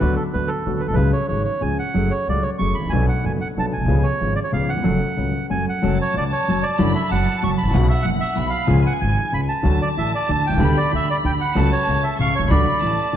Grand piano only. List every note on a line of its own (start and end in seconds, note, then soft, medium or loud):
0.00 0.15 D2 medium
0.00 0.15 D3 medium
0.00 0.15 F#3 medium
0.00 0.15 B3 medium
0.00 0.15 F#4 medium
0.33 0.47 D2 soft
0.33 0.47 D3 soft
0.33 0.47 F#3 soft
0.33 0.47 B3 soft
0.33 0.47 F#4 soft
0.66 0.79 D2 soft
0.66 0.80 D3 soft
0.66 0.79 F#3 soft
0.66 0.80 B3 soft
0.66 0.79 F#4 soft
0.86 0.90 A#1 soft
0.90 0.94 B1 soft
0.90 0.97 C2 medium
0.96 1.11 C#2 medium
0.96 1.10 C#3 medium
0.96 1.10 F#3 soft
0.96 1.10 G#3 medium
0.96 1.11 C#4 soft
0.96 1.11 G#4 medium
1.28 1.43 G#1 soft
1.28 1.43 G#2 soft
1.28 1.43 F#3 soft
1.28 1.43 G#3 soft
1.28 1.43 C#4 soft
1.28 1.43 G#4 soft
1.61 1.76 C#2 soft
1.61 1.76 C#3 soft
1.61 1.76 F3 soft
1.61 1.76 G#3 soft
1.61 1.76 C#4 soft
1.61 1.76 G#4 soft
1.94 2.09 F#2 medium
1.94 2.09 F#3 medium
1.94 2.09 A3 medium
1.94 2.09 C#4 soft
1.94 2.09 G#4 medium
2.28 2.42 C#2 soft
2.28 2.42 C#3 soft
2.28 2.42 F#3 soft
2.28 2.42 A3 soft
2.28 2.42 C#4 soft
2.28 2.42 G#4 soft
2.59 2.73 F#2 soft
2.59 2.73 F#3 soft
2.59 2.73 A3 soft
2.59 2.73 C#4 soft
2.59 2.74 G#4 soft
2.79 2.84 G#1 soft
2.79 2.88 A1 soft
2.88 2.92 A#1 medium
2.92 3.06 B1 medium
2.92 3.06 B2 medium
2.92 3.06 F#3 medium
2.92 3.06 B3 medium
2.92 3.06 D4 medium
2.92 3.06 A4 medium
3.23 3.37 F#1 soft
3.23 3.38 F#2 soft
3.23 3.38 F#3 soft
3.23 3.37 B3 soft
3.23 3.38 D4 soft
3.23 3.38 A4 soft
3.57 3.70 B1 soft
3.57 3.71 B2 soft
3.57 3.71 F#3 soft
3.57 3.71 B3 soft
3.57 3.71 D4 soft
3.57 3.71 A4 soft
3.77 3.81 A#1 soft
3.77 3.85 B1 soft
3.86 3.89 C2 medium
3.86 4.02 C#2 medium
3.86 4.02 C#3 medium
3.86 4.02 F3 medium
3.86 4.02 B3 medium
3.86 4.02 C#4 medium
3.86 4.02 G#4 medium
4.20 4.35 G#1 soft
4.20 4.35 G#2 soft
4.20 4.34 F3 soft
4.20 4.34 B3 soft
4.20 4.34 C#4 soft
4.20 4.34 G#4 soft
4.52 4.66 C#2 medium
4.52 4.66 C#3 medium
4.52 4.66 F3 soft
4.52 4.66 B3 soft
4.52 4.66 C#4 soft
4.52 4.66 G#4 soft
4.73 4.77 D#2 soft
4.73 4.81 E2 soft
4.80 4.85 F2 medium
4.80 4.98 F#3 medium
4.84 4.98 F#2 medium
4.84 4.98 A3 medium
4.84 4.98 C#4 medium
4.84 4.98 A4 medium
5.17 5.31 C#2 soft
5.17 5.31 C#3 soft
5.17 5.31 F#3 soft
5.17 5.31 A3 soft
5.17 5.31 C#4 soft
5.17 5.32 A4 soft
5.50 5.64 F#2 soft
5.50 5.64 F#3 soft
5.50 5.64 A3 soft
5.50 5.64 C#4 soft
5.50 5.64 A4 soft
5.82 5.97 F#2 medium
5.82 5.97 F#3 medium
5.82 5.97 A3 medium
5.82 5.97 C#4 medium
5.82 5.97 A4 medium
6.14 6.28 C#2 medium
6.14 6.28 C#3 soft
6.48 6.61 F#2 medium
6.48 6.61 F#3 medium
6.79 6.92 F#2 medium
6.79 6.92 E3 medium
6.79 6.92 F#3 medium
6.79 6.92 A3 medium
6.79 6.93 D4 medium
6.79 6.93 F#4 medium
7.12 7.25 F#2 soft
7.12 7.25 F#3 medium
7.43 7.56 F#2 medium
7.43 7.56 F#3 medium
7.63 7.67 G#1 medium
7.63 7.70 A1 medium
7.70 7.74 A#1 medium
7.70 7.87 B1 medium
7.70 7.87 B2 medium
7.70 7.87 C#3 medium
7.70 7.87 F#3 medium
7.70 7.87 B3 medium
7.75 7.88 F#4 medium
8.05 8.18 F#1 soft
8.05 8.18 F#2 medium
8.35 8.49 B1 medium
8.35 8.49 B2 medium
8.67 8.81 C#2 medium
8.67 8.81 C#3 medium
8.67 8.81 F3 medium
8.67 8.81 G#3 medium
8.67 8.81 F4 medium
9.01 9.14 G#1 medium
9.01 9.14 G#2 soft
9.32 9.46 C#2 soft
9.32 9.46 C#3 soft
9.63 9.77 D2 medium
9.63 9.78 D3 medium
9.63 9.77 F#3 medium
9.63 9.78 A3 medium
9.63 9.78 F#4 medium
9.97 10.11 A1 soft
9.97 10.11 A2 soft
10.29 10.42 D2 medium
10.29 10.42 D3 medium
10.49 10.53 B1 soft
10.49 10.56 C2 medium
10.57 10.61 C#2 medium
10.57 10.73 D2 medium
10.57 10.74 D3 medium
10.57 10.74 A3 medium
10.57 10.74 B3 medium
10.57 10.74 G4 medium
10.92 11.06 D2 soft
10.92 11.06 D3 soft
11.24 11.37 D2 medium
11.24 11.38 D3 medium
11.55 11.69 C#2 medium
11.55 11.69 C#3 medium
11.55 11.69 F#3 medium
11.55 11.69 A3 medium
11.55 11.69 F#4 medium
11.89 12.01 C#2 soft
11.89 12.01 C#3 soft
12.19 12.32 C#2 medium
12.19 12.32 C#3 medium
12.39 12.43 B1 soft
12.45 12.48 C2 medium
12.45 12.51 C#2 medium
12.51 12.64 D2 medium
12.51 12.64 D3 medium
12.51 12.64 F#3 medium
12.51 12.64 A3 medium
12.51 12.64 F#4 medium
12.81 12.95 A1 soft
12.81 12.95 A2 soft
13.13 13.17 D2 medium
13.13 13.17 D3 medium